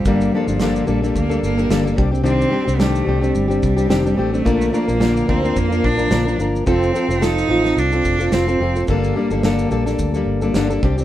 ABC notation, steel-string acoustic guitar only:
X:1
M:4/4
L:1/16
Q:"Swing 16ths" 1/4=108
K:Gm
V:1 name="Steel-string acoustic guitar"
[G,,D,G,B,DA]2 [G,B,DA] [G,B,DA] [G,,D,G,B,DA]2 [G,B,DA] [G,B,DA]2 [G,B,DA]2 [G,B,DA] [G,,D,G,B,DA] [G,B,DA] [G,CDG] [G,CDG] | [C,E,G,CDG]2 [G,CDG] [G,CDG] [C,E,G,CDG]2 [G,CDG] [G,CDG]2 [G,CDG]2 [G,CDG] [C,E,G,CDG] [G,CDG] [G,CDG] [G,CDG] | [B,,D,F,B,DB]2 [F,B,DB] [F,B,DB] [B,,D,F,B,DB]2 [F,B,DB] [F,B,DB]2 [F,B,DB]2 [F,B,DB] [B,,D,F,B,DB] [F,B,DB] [F,B,DB]2 | [F,CFA]2 [F,CFA] [CFA] [F,CFA]2 [F,CFA] [CFA]2 [CFA]2 [CFA] [F,CFA] [CFA] [F,CFA] [CFA] |
[G,,D,G,B,DA]2 [G,B,DA] [G,B,DA] [G,,D,G,B,DA]2 [G,B,DA] [G,B,DA]2 [G,B,DA]2 [G,B,DA] [G,,D,G,B,DA] [G,B,DA] [G,CDG] [G,CDG] |]